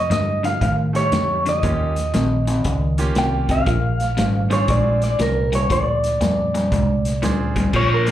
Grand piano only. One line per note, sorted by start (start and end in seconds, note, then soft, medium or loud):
0.93 1.59 G3 soft
0.93 1.59 A3 medium
0.93 1.60 D#4 soft
0.93 1.60 G4 medium
1.62 1.93 A#3 medium
1.62 1.93 C#4 medium
1.62 1.93 F4 medium
1.62 1.94 G4 medium
2.98 3.63 A#3 medium
2.98 3.63 C#4 medium
2.98 3.63 F4 medium
2.98 3.64 G4 medium
4.50 5.15 C4 medium
4.50 5.16 D4 medium
4.50 5.16 F4 medium
4.50 5.16 G#4 medium
7.22 7.73 C4 medium
7.22 7.73 D4 medium
7.22 7.74 F4 medium
7.22 7.74 G#4 medium
8.06 8.11 G#3 medium
8.06 8.11 A#3 medium
8.06 8.11 C4 medium
8.06 8.11 D4 medium
8.06 8.11 F4 medium